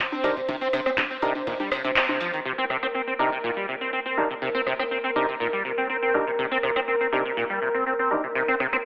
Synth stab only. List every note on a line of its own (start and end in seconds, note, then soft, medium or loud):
0.24 0.34 D4 medium
0.24 0.34 D#4 medium
0.24 0.34 G4 medium
0.24 0.34 A#4 medium
1.22 1.33 D4 medium
1.22 1.33 D#4 medium
1.22 1.33 G4 medium
1.22 1.33 A#4 medium
3.19 3.30 D4 medium
3.19 3.30 D#4 medium
3.19 3.30 G4 medium
3.19 3.30 A#4 medium
4.17 4.28 D4 medium
4.17 4.28 D#4 medium
4.17 4.28 G4 medium
4.17 4.28 A#4 medium
5.16 5.26 D4 medium
5.16 5.26 D#4 medium
5.16 5.26 G4 medium
5.16 5.26 A#4 medium
6.14 6.25 D4 medium
6.14 6.25 D#4 medium
6.14 6.25 G4 medium
6.14 6.25 A#4 medium
7.13 7.23 D4 medium
7.13 7.23 D#4 medium
7.13 7.23 G4 medium
7.13 7.23 A#4 medium
8.11 8.21 D4 medium
8.11 8.21 D#4 medium
8.11 8.21 G4 medium
8.11 8.21 A#4 medium